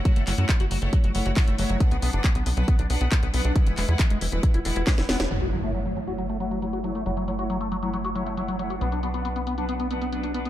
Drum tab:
CC |----------------|----------------|----------------|x---------------|
HH |xxoxxxoxxxoxoxox|xxoxxxoxxxoxxxox|xxoxxxoxxxoxoxox|--xxxxxxxxxxxxxx|
CP |--x-x-------x---|----x-------x---|--x-x-------x---|----------------|
SD |----------------|----------------|------------oooo|----------------|
BD |o---o---o---o---|o---o---o---o---|o---o---o---o---|----------------|

CC |----------------|----------------|
HH |xxxxxxxxxxxxxxxx|xxxxxxxxxxxxxxxx|
CP |----------------|----------------|
SD |----------------|----------------|
BD |----------------|----------------|